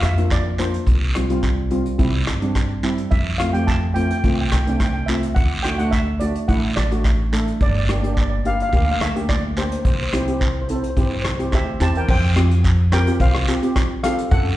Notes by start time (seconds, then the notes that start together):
0.02 F2 E5, cross-stick, closed hi-hat, short guiro
0.18 A#3 D4 F4, closed hi-hat
0.30 D5, kick, cross-stick, closed hi-hat, short guiro
0.58 A#3 D4 F4 C5, closed hi-hat, short guiro
0.74 closed hi-hat
0.86 C2, kick, closed hi-hat, long guiro
1.15 G3 C4 F4, cross-stick, closed hi-hat
1.30 G3 C4 F4, closed hi-hat
1.43 kick, closed hi-hat, short guiro
1.71 G3 C4 F4, closed hi-hat
1.86 closed hi-hat
1.98 C2 G3 C4 E4, kick, closed hi-hat, long guiro
2.27 G2, cross-stick, closed hi-hat, short guiro
2.42 G3 C4 D4, closed hi-hat
2.55 kick, cross-stick, closed hi-hat, short guiro
2.83 G3 C4 E4, closed hi-hat, short guiro
2.98 closed hi-hat
3.11 F2 E5, kick, closed hi-hat, long guiro
3.38 A3 C4 F4 F5, cross-stick, closed hi-hat
3.53 A3 C4 G4 G5, closed hi-hat
3.67 A5, kick, closed hi-hat, short guiro
3.94 A3 C4 F4 G5, closed hi-hat
4.03 G5
4.11 G5, closed hi-hat
4.18 G5
4.24 C2 A3 C4 F4, kick, closed hi-hat, long guiro
4.34 G5
4.41 G5
4.48 C2 G5, cross-stick, closed hi-hat, short guiro
4.55 G5
4.63 G5
4.67 A3 C4 D4 G5, closed hi-hat
4.78 G5, kick, cross-stick, closed hi-hat, short guiro
4.85 G5
4.93 G5
5.06 A3 C4 F4 E5, closed hi-hat, short guiro
5.23 closed hi-hat
5.35 D2 F#5, kick, closed hi-hat, long guiro
5.63 A3 D4 F#4 G5, cross-stick, closed hi-hat
5.78 A3 D4 F#4 F#5, closed hi-hat
5.91 E5, kick, closed hi-hat, short guiro
6.20 A3 D4 F#4 D5, closed hi-hat
6.35 closed hi-hat
6.48 A1 A3 D4 E4 F#5, kick, closed hi-hat, long guiro
6.76 A1 D5, cross-stick, closed hi-hat, short guiro
6.91 A3 D4 F#4, closed hi-hat
7.04 kick, cross-stick, closed hi-hat, short guiro
7.33 A3 D4 A4, closed hi-hat, short guiro
7.48 closed hi-hat
7.61 G1 D5, kick, closed hi-hat, long guiro
7.70 D5
7.78 D5
7.89 A#3 D4 G4 D5, cross-stick, closed hi-hat
8.00 A#3 D4 G4 D5, closed hi-hat
8.08 D5
8.14 D5, kick, closed hi-hat, short guiro
8.21 D5
8.30 D5
8.45 A#3 D4 G4 F5, closed hi-hat
8.54 F5
8.60 F5, closed hi-hat
8.69 A#3 D4 F5, kick, long guiro
8.73 D2 G4 F5, closed hi-hat
8.85 F5
8.91 F5
9.00 D2 E5, cross-stick, closed hi-hat, short guiro
9.15 A#3 D4 G4, closed hi-hat
9.29 D5, kick, cross-stick, closed hi-hat, short guiro
9.57 A#3 D4 G4 C5, closed hi-hat, short guiro
9.65 C5
9.72 C5, closed hi-hat
9.79 C5
9.85 C2 C5, kick, closed hi-hat, long guiro
9.94 C5
10.03 C5
10.09 C5, cross-stick, closed hi-hat
10.13 C4 E4 G4 C5
10.25 C4 E4 G4 C5, closed hi-hat
10.32 C5
10.40 C5, kick, closed hi-hat, short guiro
10.47 C5
10.54 C5
10.62 C5
10.68 C4 E4 A4 C5, closed hi-hat
10.76 C5
10.83 C5, closed hi-hat
10.90 C5
10.97 G2 C4 E4 G4 C5, kick, closed hi-hat, long guiro
11.06 C5
11.14 C5
11.22 C2 C5, cross-stick, closed hi-hat, short guiro
11.30 C5
11.37 C4 E4 G4 C5, closed hi-hat
11.45 C5
11.52 D2 G4 C5 E5, kick, cross-stick, closed hi-hat, short guiro
11.60 C5
11.80 E2 C4 E4 G4 C5 A5, closed hi-hat, short guiro
11.95 A#4 G5, closed hi-hat
12.08 F2 C5 G5, kick, crash, long guiro
12.36 C4 F4 G4, cross-stick, closed hi-hat
12.51 closed hi-hat
12.64 kick, closed hi-hat, short guiro
12.92 C4 F4 G4 A#4 G5, cross-stick, closed hi-hat, short guiro
13.07 C4 F4 G4, closed hi-hat
13.20 C2 C5 F5, kick, closed hi-hat, long guiro
13.35 cross-stick
13.48 C4 F4 G4, closed hi-hat, short guiro
13.62 C4 F4 G4, closed hi-hat
13.76 kick, cross-stick, closed hi-hat, short guiro
14.03 C4 F4 G4 A4 F5, cross-stick, closed hi-hat
14.18 closed hi-hat
14.31 F#2 A4 F#5, kick, closed hi-hat, long guiro